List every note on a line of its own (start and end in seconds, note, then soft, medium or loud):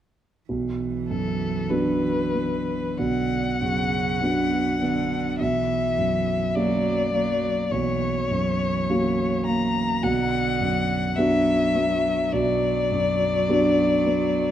0.49 2.95 B1 soft
0.49 2.99 E3 soft
1.09 2.08 F#2 soft
1.09 1.71 A4 soft
1.70 2.30 B3 soft
1.70 2.30 D4 soft
1.70 2.30 F#4 soft
1.70 2.99 B4 soft
2.35 3.37 B3 soft
2.97 5.36 B1 soft
2.97 3.60 D3 soft
2.97 5.39 F#5 medium
3.61 4.57 F#2 soft
3.61 4.22 C#3 soft
4.20 4.81 B2 soft
4.20 4.78 B3 soft
4.20 4.78 D4 soft
4.20 4.78 F#4 soft
4.82 5.43 D3 soft
4.82 5.41 B3 soft
5.39 7.69 B1 soft
5.39 6.56 E3 soft
5.39 6.56 E5 medium
5.98 6.91 F#2 soft
6.55 7.12 F#3 soft
6.55 7.10 A#3 soft
6.55 7.10 C#4 soft
6.55 7.10 F#4 soft
6.55 7.73 D5 medium
7.13 7.71 F#3 soft
7.13 8.07 A#3 soft
7.72 10.01 B1 soft
7.72 8.30 E3 soft
7.72 9.46 C#5 medium
8.31 9.24 F#2 soft
8.31 10.06 E3 soft
8.89 9.43 A#3 soft
8.89 9.44 C#4 soft
8.89 9.44 F#4 soft
9.46 10.05 A#3 soft
9.46 10.05 A#5 medium
10.03 12.29 B1 soft
10.03 11.18 D3 soft
10.03 11.17 F#5 medium
10.61 11.52 F#2 soft
11.16 14.51 F#3 soft
11.16 11.71 B3 soft
11.16 11.71 D4 soft
11.16 11.71 F#4 soft
11.16 12.34 E5 medium
11.75 12.68 B3 soft
12.33 14.51 B1 soft
12.33 14.51 D5 medium
12.91 13.83 F#2 soft
13.49 14.01 B3 soft
13.49 14.01 D4 soft
13.49 14.02 F#4 soft
14.06 14.51 B3 soft